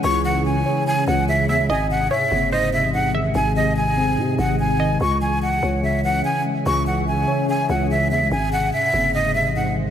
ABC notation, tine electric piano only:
X:1
M:4/4
L:1/8
Q:1/4=145
K:C#m
V:1 name="Tine electric piano" clef=bass
[C,E,G,] E,2 c C, E, C, G, | G,, ^B,,2 ^B, G,, B,, G,, D, | G,, ^B,,2 ^B, G,, B,, G,, D, | C, E,2 c C, E, C, G, |
C, E,2 c C, E, C, G, | G,, ^B,,2 ^B, G,, B,, G,, D, |]